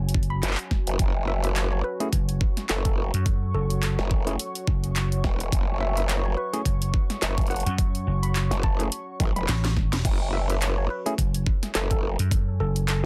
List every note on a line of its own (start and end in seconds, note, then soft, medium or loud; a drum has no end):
0.00 0.41 F#1 loud
0.00 13.06 F#4 loud
0.00 13.06 C#5 medium
0.00 1.53 G#5 loud
0.09 closed hi-hat medium
0.14 kick loud
0.23 closed hi-hat soft
0.30 1.09 B5 loud
0.43 0.56 F#1 loud
0.43 clap medium
0.43 closed hi-hat medium
0.47 clap medium
0.51 clap medium
0.55 clap loud
0.59 closed hi-hat soft
0.71 kick medium
0.71 snare soft
0.87 0.98 F#1 loud
0.87 closed hi-hat medium
0.99 1.82 F#1 loud
0.99 kick loud
0.99 closed hi-hat medium
1.28 1.38 E5 medium
1.44 1.52 E5 medium
1.44 closed hi-hat soft
1.50 10.58 C#6 loud
1.56 1.66 C#5 medium
1.56 clap loud
1.56 closed hi-hat medium
1.72 1.80 C#5 medium
1.84 2.64 B4 medium
2.00 2.08 A3 loud
2.00 2.07 C#4 medium
2.00 2.07 E4 medium
2.00 2.07 G#4 loud
2.00 closed hi-hat soft
2.13 2.39 F#1 medium
2.13 kick medium
2.13 closed hi-hat medium
2.29 closed hi-hat medium
2.41 kick loud
2.57 snare soft
2.57 closed hi-hat soft
2.69 3.11 F#1 loud
2.69 2.80 A4 medium
2.69 clap loud
2.69 closed hi-hat medium
2.85 2.93 A4 medium
2.85 kick loud
2.85 closed hi-hat soft
3.14 3.52 F#2 loud
3.14 closed hi-hat medium
3.26 kick loud
3.26 closed hi-hat medium
3.54 3.96 F#1 medium
3.54 3.79 A4 medium
3.70 closed hi-hat soft
3.83 4.27 A4 medium
3.83 clap loud
3.83 closed hi-hat medium
3.99 4.37 F#1 loud
3.99 snare soft
4.11 kick loud
4.27 4.34 A3 medium
4.27 4.34 C#4 medium
4.27 4.34 E4 medium
4.27 4.34 G#4 loud
4.27 closed hi-hat soft
4.39 closed hi-hat medium
4.55 closed hi-hat medium
4.67 5.22 F#1 medium
4.67 kick loud
4.84 closed hi-hat soft
4.96 clap loud
4.96 closed hi-hat medium
5.12 closed hi-hat soft
5.24 5.50 E1 loud
5.24 kick medium
5.24 snare soft
5.40 closed hi-hat medium
5.52 6.35 F#1 loud
5.52 kick loud
5.52 closed hi-hat medium
5.81 5.91 E5 medium
5.97 6.04 E5 medium
5.97 closed hi-hat soft
6.09 6.19 C#5 medium
6.09 clap loud
6.09 closed hi-hat medium
6.25 6.33 C#5 medium
6.37 7.17 B4 medium
6.53 6.60 A3 medium
6.53 6.60 C#4 medium
6.53 6.60 E4 medium
6.53 6.60 G#4 loud
6.53 closed hi-hat soft
6.65 6.92 F#1 loud
6.65 kick medium
6.65 closed hi-hat medium
6.82 closed hi-hat medium
6.94 kick loud
7.10 snare soft
7.10 closed hi-hat soft
7.22 7.64 F#1 loud
7.22 7.47 E5 medium
7.22 clap loud
7.22 closed hi-hat medium
7.38 kick loud
7.38 closed hi-hat soft
7.41 closed hi-hat soft
7.47 7.60 F#5 medium
7.47 closed hi-hat soft
7.51 closed hi-hat soft
7.56 closed hi-hat soft
7.60 closed hi-hat soft
7.66 8.05 F#2 loud
7.66 7.74 F#5 medium
7.66 closed hi-hat medium
7.78 kick loud
7.78 closed hi-hat medium
7.95 closed hi-hat soft
8.07 8.49 F#1 medium
8.23 8.31 B5 medium
8.23 closed hi-hat soft
8.35 8.45 B5 medium
8.35 clap loud
8.35 closed hi-hat medium
8.51 8.90 F#1 loud
8.51 snare soft
8.51 closed hi-hat soft
8.63 8.88 A5 medium
8.63 kick loud
8.79 8.87 A3 medium
8.79 8.87 C#4 medium
8.79 8.87 E4 medium
8.79 8.87 G#4 loud
8.79 closed hi-hat soft
8.92 closed hi-hat medium
9.20 9.34 A1 loud
9.20 kick loud
9.20 closed hi-hat medium
9.20 high tom medium
9.36 9.46 E1 loud
9.36 10.15 B5 medium
9.36 closed hi-hat soft
9.36 high tom medium
9.49 10.03 A1 medium
9.49 snare medium
9.49 clap loud
9.49 closed hi-hat medium
9.64 snare medium
9.64 closed hi-hat soft
9.77 kick medium
9.77 snare soft
9.93 snare medium
9.93 closed hi-hat medium
10.05 10.88 F#1 loud
10.05 kick loud
10.05 closed hi-hat medium
10.05 crash medium
10.34 10.44 E5 medium
10.50 10.57 E5 medium
10.50 closed hi-hat soft
10.56 13.06 G#5 loud
10.62 10.72 C#5 medium
10.62 clap loud
10.62 closed hi-hat medium
10.78 10.86 C#5 medium
10.90 11.70 B4 medium
11.06 11.13 A3 medium
11.06 11.13 C#4 medium
11.06 11.13 E4 medium
11.06 11.13 G#4 loud
11.06 closed hi-hat soft
11.18 11.45 F#1 loud
11.18 kick medium
11.18 closed hi-hat medium
11.34 closed hi-hat medium
11.46 kick loud
11.63 snare soft
11.63 closed hi-hat soft
11.75 12.17 F#1 medium
11.75 11.85 A4 medium
11.75 clap loud
11.75 closed hi-hat medium
11.91 11.99 A4 medium
11.91 kick loud
11.91 closed hi-hat soft
12.19 12.58 F#2 loud
12.19 closed hi-hat medium
12.31 kick loud
12.31 closed hi-hat medium
12.60 13.02 F#1 medium
12.60 12.85 A4 loud
12.76 closed hi-hat soft
12.88 13.06 A4 medium
12.88 clap loud
12.88 closed hi-hat medium